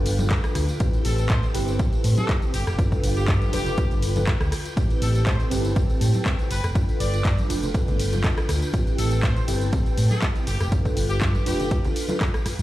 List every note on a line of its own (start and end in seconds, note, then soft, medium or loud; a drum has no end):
0.00 0.25 G1 medium
0.00 0.77 D4 medium
0.00 0.77 F4 medium
0.00 0.78 F4 medium
0.00 0.78 A4 medium
0.00 0.78 B4 loud
0.00 0.78 B4 medium
0.00 0.76 G5 medium
0.06 open hi-hat loud
0.06 ride medium
0.06 tambourine medium
0.19 closed hi-hat medium
0.19 tambourine medium
0.19 tambourine soft
0.19 high conga loud
0.19 low conga medium
0.31 kick loud
0.31 cross-stick medium
0.31 clap loud
0.31 closed hi-hat medium
0.31 ride medium
0.31 tambourine soft
0.44 cross-stick medium
0.44 closed hi-hat soft
0.44 tambourine soft
0.55 0.65 D2 medium
0.55 cross-stick medium
0.55 open hi-hat loud
0.55 ride medium
0.55 tambourine medium
0.69 closed hi-hat medium
0.69 tambourine medium
0.69 tambourine soft
0.80 0.90 A1 loud
0.80 1.52 C4 medium
0.80 2.52 C4 medium
0.80 1.52 E4 medium
0.80 1.52 G4 medium
0.80 2.52 A4 medium
0.80 1.52 B4 loud
0.80 12.62 G5 medium
0.80 kick loud
0.80 closed hi-hat medium
0.80 ride medium
0.80 tambourine soft
0.93 closed hi-hat soft
0.93 tambourine soft
1.05 1.23 A1 loud
1.05 1.14 A4 medium
1.05 open hi-hat loud
1.05 ride medium
1.05 tambourine medium
1.18 1.26 A4 medium
1.18 closed hi-hat medium
1.18 tambourine medium
1.18 tambourine soft
1.30 1.39 A2 medium
1.30 1.48 C5 medium
1.30 kick loud
1.30 clap loud
1.30 closed hi-hat medium
1.30 ride medium
1.30 tambourine soft
1.43 closed hi-hat soft
1.43 tambourine soft
1.54 1.73 G1 medium
1.54 2.52 C4 loud
1.54 2.52 E4 medium
1.54 2.53 G4 medium
1.54 2.53 B4 loud
1.54 open hi-hat loud
1.54 ride medium
1.54 tambourine medium
1.68 closed hi-hat medium
1.68 tambourine medium
1.68 tambourine soft
1.79 1.89 A1 medium
1.79 kick loud
1.79 closed hi-hat medium
1.79 ride medium
1.79 tambourine medium
1.79 tambourine soft
1.93 closed hi-hat soft
1.93 tambourine soft
2.04 2.14 A2 medium
2.04 open hi-hat loud
2.04 ride medium
2.04 tambourine medium
2.18 2.35 A4 loud
2.18 closed hi-hat medium
2.18 tambourine medium
2.18 tambourine soft
2.18 high conga medium
2.29 kick loud
2.29 clap loud
2.29 closed hi-hat medium
2.29 ride medium
2.29 tambourine medium
2.29 tambourine soft
2.42 closed hi-hat soft
2.42 tambourine soft
2.54 2.63 G1 loud
2.54 4.75 F4 medium
2.54 2.63 G4 loud
2.54 4.75 B4 medium
2.54 open hi-hat loud
2.54 ride medium
2.54 tambourine medium
2.67 2.75 F1 medium
2.67 2.75 G4 medium
2.67 cross-stick medium
2.67 closed hi-hat soft
2.67 tambourine medium
2.67 tambourine soft
2.78 2.88 G1 loud
2.78 3.50 D4 medium
2.78 3.50 F4 medium
2.78 3.50 A4 medium
2.78 3.51 B4 loud
2.78 kick loud
2.78 closed hi-hat medium
2.78 ride medium
2.78 tambourine medium
2.78 tambourine soft
2.92 muted fingered electric bass stroke soft
2.92 kick medium
2.92 closed hi-hat soft
2.92 tambourine soft
3.03 3.22 G1 loud
3.03 open hi-hat loud
3.03 ride medium
3.03 tambourine medium
3.17 3.51 G4 medium
3.17 closed hi-hat medium
3.17 tambourine medium
3.17 tambourine soft
3.28 3.38 G2 loud
3.28 kick loud
3.28 clap loud
3.28 closed hi-hat medium
3.28 ride medium
3.28 tambourine medium
3.28 tambourine soft
3.41 closed hi-hat soft
3.41 tambourine soft
3.41 high conga medium
3.52 3.71 F1 medium
3.52 4.13 D4 medium
3.52 4.13 F4 medium
3.52 3.91 G4 loud
3.52 4.13 A4 medium
3.52 4.14 B4 loud
3.52 open hi-hat loud
3.52 ride medium
3.52 tambourine medium
3.66 closed hi-hat soft
3.66 tambourine medium
3.66 tambourine soft
3.66 low conga medium
3.78 kick loud
3.78 closed hi-hat medium
3.78 ride medium
3.78 tambourine medium
3.78 tambourine soft
3.91 4.22 G1 medium
3.91 closed hi-hat soft
3.91 tambourine soft
3.91 low conga medium
4.02 open hi-hat loud
4.02 ride medium
4.02 tambourine medium
4.16 4.23 D4 medium
4.16 4.23 F4 medium
4.16 4.24 A4 medium
4.16 4.24 B4 medium
4.16 closed hi-hat medium
4.16 tambourine medium
4.16 tambourine soft
4.16 high conga loud
4.16 low conga medium
4.27 kick loud
4.27 cross-stick medium
4.27 clap loud
4.27 closed hi-hat medium
4.27 ride medium
4.27 tambourine soft
4.27 tambourine medium
4.41 4.49 D2 medium
4.41 cross-stick medium
4.41 closed hi-hat soft
4.41 tambourine soft
4.52 cross-stick medium
4.52 open hi-hat loud
4.52 ride medium
4.52 tambourine medium
4.65 closed hi-hat soft
4.65 tambourine medium
4.65 tambourine soft
4.76 4.86 A1 loud
4.76 5.48 C4 medium
4.76 6.49 C4 medium
4.76 5.48 E4 medium
4.76 5.49 G4 medium
4.76 6.49 A4 medium
4.76 5.49 B4 loud
4.76 kick loud
4.76 closed hi-hat medium
4.76 ride medium
4.76 tambourine medium
4.76 tambourine soft
4.90 closed hi-hat soft
4.90 tambourine soft
5.02 5.20 A1 medium
5.02 5.10 A4 medium
5.02 open hi-hat loud
5.02 ride medium
5.02 tambourine medium
5.15 5.23 A4 medium
5.15 closed hi-hat medium
5.15 tambourine medium
5.15 tambourine soft
5.27 5.36 A2 medium
5.27 5.45 C5 medium
5.27 kick loud
5.27 clap loud
5.27 closed hi-hat medium
5.27 ride medium
5.27 tambourine soft
5.40 closed hi-hat soft
5.40 tambourine soft
5.50 5.69 G1 medium
5.50 6.49 C4 medium
5.50 6.49 E4 medium
5.50 6.49 G4 medium
5.50 6.50 B4 loud
5.50 open hi-hat loud
5.50 ride medium
5.50 tambourine medium
5.65 closed hi-hat soft
5.65 tambourine medium
5.65 tambourine soft
5.76 5.86 A1 medium
5.76 kick loud
5.76 closed hi-hat medium
5.76 ride medium
5.76 tambourine medium
5.76 tambourine soft
5.89 closed hi-hat soft
5.89 tambourine soft
6.01 6.10 A2 medium
6.01 open hi-hat loud
6.01 ride medium
6.01 tambourine medium
6.14 closed hi-hat medium
6.14 tambourine medium
6.14 tambourine soft
6.14 high conga medium
6.26 kick loud
6.26 clap loud
6.26 closed hi-hat medium
6.26 ride medium
6.26 tambourine medium
6.26 tambourine soft
6.39 closed hi-hat soft
6.39 tambourine soft
6.50 6.60 G1 loud
6.50 8.72 F4 medium
6.50 6.69 B4 loud
6.50 8.72 B4 medium
6.50 open hi-hat loud
6.50 ride medium
6.50 tambourine medium
6.64 6.72 F1 medium
6.64 cross-stick medium
6.64 closed hi-hat medium
6.64 tambourine medium
6.64 tambourine soft
6.75 6.85 G1 loud
6.75 7.47 D4 medium
6.75 7.47 F4 medium
6.75 7.47 A4 medium
6.75 7.47 B4 loud
6.75 kick loud
6.75 closed hi-hat medium
6.75 ride medium
6.75 tambourine medium
6.75 tambourine soft
6.88 muted fingered electric bass stroke soft
6.88 closed hi-hat soft
6.88 tambourine soft
7.00 7.18 G1 medium
7.00 7.38 D5 medium
7.00 open hi-hat loud
7.00 ride medium
7.00 tambourine medium
7.14 closed hi-hat medium
7.14 tambourine medium
7.14 tambourine soft
7.25 7.34 G2 medium
7.25 kick loud
7.25 clap loud
7.25 closed hi-hat medium
7.25 ride medium
7.25 tambourine soft
7.37 closed hi-hat soft
7.37 tambourine soft
7.37 high conga medium
7.39 tambourine soft
7.49 7.68 F1 loud
7.49 8.71 D4 medium
7.49 8.71 F4 medium
7.49 8.71 A4 medium
7.49 8.71 B4 loud
7.49 open hi-hat loud
7.49 ride medium
7.49 tambourine medium
7.63 closed hi-hat medium
7.63 tambourine medium
7.63 low conga medium
7.64 tambourine soft
7.74 kick loud
7.74 closed hi-hat medium
7.74 ride medium
7.74 tambourine medium
7.74 tambourine soft
7.88 8.19 G1 medium
7.88 closed hi-hat soft
7.88 tambourine soft
7.88 low conga medium
7.99 open hi-hat loud
7.99 ride medium
7.99 tambourine medium
8.12 closed hi-hat medium
8.12 tambourine medium
8.12 tambourine soft
8.12 high conga medium
8.12 low conga medium
8.24 kick loud
8.24 cross-stick medium
8.24 clap loud
8.24 closed hi-hat medium
8.24 ride medium
8.24 tambourine medium
8.24 tambourine soft
8.37 cross-stick medium
8.37 closed hi-hat soft
8.37 tambourine soft
8.49 8.58 D2 loud
8.49 cross-stick medium
8.49 open hi-hat loud
8.49 ride medium
8.49 tambourine medium
8.62 closed hi-hat medium
8.62 tambourine medium
8.62 tambourine soft
8.73 8.83 A1 loud
8.73 9.45 C4 medium
8.73 10.45 C4 medium
8.73 9.45 E4 medium
8.73 9.45 G4 medium
8.73 10.45 A4 medium
8.73 9.46 B4 loud
8.73 kick loud
8.73 closed hi-hat medium
8.73 ride medium
8.73 tambourine medium
8.75 tambourine soft
8.87 closed hi-hat soft
8.87 tambourine soft
8.98 9.17 A1 loud
8.98 9.07 A4 medium
8.98 open hi-hat loud
8.98 ride medium
8.98 tambourine medium
9.11 9.19 A4 medium
9.11 closed hi-hat medium
9.11 tambourine medium
9.11 tambourine soft
9.23 9.33 A2 loud
9.23 9.42 C5 medium
9.23 kick loud
9.23 clap loud
9.23 closed hi-hat medium
9.23 ride medium
9.23 tambourine soft
9.36 closed hi-hat soft
9.36 tambourine soft
9.47 9.66 G1 medium
9.47 10.45 C4 loud
9.47 10.46 E4 medium
9.47 10.46 G4 medium
9.47 10.46 B4 loud
9.47 open hi-hat loud
9.47 ride medium
9.47 tambourine medium
9.61 closed hi-hat medium
9.61 tambourine medium
9.61 tambourine soft
9.73 9.82 A1 medium
9.73 kick loud
9.73 closed hi-hat medium
9.73 ride medium
9.73 tambourine medium
9.73 tambourine soft
9.86 closed hi-hat soft
9.86 tambourine soft
9.97 10.07 A2 medium
9.97 open hi-hat loud
9.97 ride medium
9.97 tambourine medium
10.11 10.28 A4 medium
10.11 closed hi-hat medium
10.11 tambourine medium
10.11 tambourine soft
10.11 high conga medium
10.21 kick loud
10.21 clap loud
10.21 closed hi-hat medium
10.21 ride medium
10.21 tambourine medium
10.23 tambourine soft
10.35 closed hi-hat soft
10.35 tambourine soft
10.47 10.57 G1 medium
10.47 12.62 F4 medium
10.47 10.56 G4 loud
10.47 12.62 B4 medium
10.47 open hi-hat loud
10.47 ride medium
10.47 tambourine medium
10.61 10.69 F1 medium
10.61 10.68 G4 medium
10.61 cross-stick medium
10.61 closed hi-hat medium
10.61 tambourine medium
10.61 tambourine soft
10.71 10.81 G1 loud
10.71 11.43 D4 medium
10.71 11.44 F4 medium
10.71 11.44 A4 medium
10.71 11.44 B4 loud
10.71 kick loud
10.71 closed hi-hat medium
10.71 ride medium
10.71 tambourine soft
10.85 muted fingered electric bass stroke soft
10.85 kick medium
10.85 closed hi-hat soft
10.85 tambourine soft
10.97 11.15 G1 loud
10.97 open hi-hat loud
10.97 ride medium
10.97 tambourine medium
11.10 11.44 G4 loud
11.10 closed hi-hat medium
11.10 tambourine medium
11.10 tambourine soft
11.21 11.31 G2 loud
11.21 kick loud
11.21 clap loud
11.21 closed hi-hat medium
11.21 ride medium
11.21 tambourine medium
11.21 tambourine soft
11.35 closed hi-hat soft
11.35 tambourine soft
11.35 high conga medium
11.46 11.65 F1 medium
11.46 12.06 D4 medium
11.46 12.07 F4 medium
11.46 11.85 G4 loud
11.46 12.07 A4 medium
11.46 12.07 B4 loud
11.46 open hi-hat loud
11.46 ride medium
11.46 tambourine medium
11.60 closed hi-hat medium
11.60 tambourine soft
11.60 tambourine medium
11.60 low conga medium
11.71 kick loud
11.71 closed hi-hat medium
11.71 ride medium
11.71 tambourine soft
11.84 closed hi-hat soft
11.84 tambourine soft
11.84 low conga loud
11.96 open hi-hat loud
11.96 ride medium
11.96 tambourine medium
12.09 12.17 D4 medium
12.09 12.17 F4 medium
12.09 12.17 A4 medium
12.09 12.17 B4 medium
12.09 closed hi-hat medium
12.09 tambourine medium
12.09 high conga medium
12.09 low conga medium
12.10 tambourine soft
12.21 kick loud
12.21 cross-stick medium
12.21 clap loud
12.21 closed hi-hat medium
12.21 ride medium
12.21 tambourine medium
12.21 tambourine soft
12.34 cross-stick medium
12.34 closed hi-hat soft
12.34 tambourine soft
12.46 muted fingered electric bass stroke soft
12.46 cross-stick medium
12.46 open hi-hat loud
12.46 ride medium
12.46 tambourine medium
12.59 12.62 G2 medium
12.59 closed hi-hat medium
12.59 tambourine medium